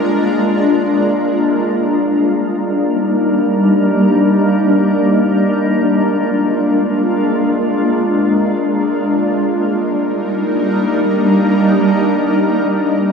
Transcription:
0, 0, Header, 1, 2, 480
1, 0, Start_track
1, 0, Key_signature, -3, "major"
1, 0, Tempo, 500000
1, 12596, End_track
2, 0, Start_track
2, 0, Title_t, "Ambient pad"
2, 0, Program_c, 0, 92
2, 0, Note_on_c, 0, 56, 81
2, 0, Note_on_c, 0, 58, 72
2, 0, Note_on_c, 0, 62, 76
2, 0, Note_on_c, 0, 65, 74
2, 0, Note_on_c, 0, 70, 88
2, 1819, Note_off_c, 0, 56, 0
2, 1819, Note_off_c, 0, 58, 0
2, 1819, Note_off_c, 0, 62, 0
2, 1819, Note_off_c, 0, 65, 0
2, 1819, Note_off_c, 0, 70, 0
2, 1855, Note_on_c, 0, 70, 88
2, 1856, Note_on_c, 0, 58, 72
2, 1856, Note_on_c, 0, 62, 69
2, 1856, Note_on_c, 0, 63, 73
2, 1857, Note_on_c, 0, 55, 80
2, 5419, Note_off_c, 0, 58, 0
2, 5420, Note_off_c, 0, 55, 0
2, 5420, Note_off_c, 0, 63, 0
2, 5456, Note_on_c, 0, 56, 79
2, 5456, Note_on_c, 0, 58, 69
2, 5457, Note_on_c, 0, 65, 70
2, 9017, Note_off_c, 0, 62, 0
2, 9017, Note_off_c, 0, 70, 0
2, 9019, Note_off_c, 0, 56, 0
2, 9019, Note_off_c, 0, 58, 0
2, 9020, Note_off_c, 0, 65, 0
2, 9053, Note_on_c, 0, 55, 76
2, 9053, Note_on_c, 0, 62, 71
2, 9053, Note_on_c, 0, 63, 70
2, 9053, Note_on_c, 0, 70, 85
2, 9054, Note_on_c, 0, 58, 69
2, 12596, Note_off_c, 0, 55, 0
2, 12596, Note_off_c, 0, 58, 0
2, 12596, Note_off_c, 0, 62, 0
2, 12596, Note_off_c, 0, 63, 0
2, 12596, Note_off_c, 0, 70, 0
2, 12596, End_track
0, 0, End_of_file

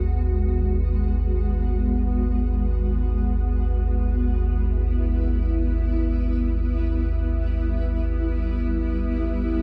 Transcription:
0, 0, Header, 1, 3, 480
1, 0, Start_track
1, 0, Tempo, 500000
1, 9238, End_track
2, 0, Start_track
2, 0, Title_t, "Ambient pad"
2, 0, Program_c, 0, 92
2, 0, Note_on_c, 0, 51, 83
2, 0, Note_on_c, 0, 56, 79
2, 0, Note_on_c, 0, 59, 64
2, 0, Note_on_c, 0, 66, 76
2, 4099, Note_off_c, 0, 51, 0
2, 4102, Note_off_c, 0, 56, 0
2, 4108, Note_on_c, 0, 64, 65
2, 4114, Note_off_c, 0, 66, 0
2, 5311, Note_on_c, 0, 55, 60
2, 8728, Note_on_c, 0, 67, 71
2, 9238, Note_off_c, 0, 55, 0
2, 9238, Note_off_c, 0, 59, 0
2, 9238, Note_off_c, 0, 64, 0
2, 9238, Note_off_c, 0, 67, 0
2, 9238, End_track
3, 0, Start_track
3, 0, Title_t, "Synth drone"
3, 0, Program_c, 1, 95
3, 0, Note_on_c, 1, 32, 67
3, 0, Note_on_c, 1, 39, 69
3, 9238, Note_off_c, 1, 32, 0
3, 9238, Note_off_c, 1, 39, 0
3, 9238, End_track
0, 0, End_of_file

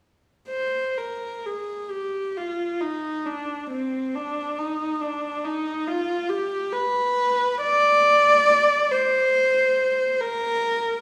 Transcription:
0, 0, Header, 1, 2, 480
1, 0, Start_track
1, 0, Key_signature, -3, "minor"
1, 0, Tempo, 980392
1, 241, Time_signature, 4, 2, 24, 8
1, 716, Tempo, 903614
1, 1676, Tempo, 868307
1, 5955, End_track
2, 0, Start_track
2, 0, Title_t, "Viola"
2, 0, Program_c, 0, 41
2, 240, Note_on_c, 0, 72, 48
2, 465, Note_off_c, 0, 72, 0
2, 479, Note_on_c, 0, 70, 43
2, 714, Note_off_c, 0, 70, 0
2, 716, Note_on_c, 0, 68, 41
2, 950, Note_on_c, 0, 67, 42
2, 960, Note_off_c, 0, 68, 0
2, 1195, Note_off_c, 0, 67, 0
2, 1199, Note_on_c, 0, 65, 39
2, 1431, Note_on_c, 0, 63, 42
2, 1438, Note_off_c, 0, 65, 0
2, 1672, Note_on_c, 0, 62, 42
2, 1673, Note_off_c, 0, 63, 0
2, 1915, Note_on_c, 0, 60, 41
2, 1918, Note_off_c, 0, 62, 0
2, 2154, Note_off_c, 0, 60, 0
2, 2163, Note_on_c, 0, 62, 50
2, 2402, Note_on_c, 0, 63, 47
2, 2403, Note_off_c, 0, 62, 0
2, 2641, Note_off_c, 0, 63, 0
2, 2642, Note_on_c, 0, 62, 49
2, 2877, Note_on_c, 0, 63, 50
2, 2879, Note_off_c, 0, 62, 0
2, 3114, Note_off_c, 0, 63, 0
2, 3114, Note_on_c, 0, 65, 52
2, 3349, Note_on_c, 0, 67, 54
2, 3351, Note_off_c, 0, 65, 0
2, 3585, Note_on_c, 0, 71, 61
2, 3591, Note_off_c, 0, 67, 0
2, 4071, Note_off_c, 0, 71, 0
2, 4075, Note_on_c, 0, 74, 81
2, 4782, Note_off_c, 0, 74, 0
2, 4792, Note_on_c, 0, 72, 64
2, 5510, Note_on_c, 0, 70, 74
2, 5516, Note_off_c, 0, 72, 0
2, 5955, Note_off_c, 0, 70, 0
2, 5955, End_track
0, 0, End_of_file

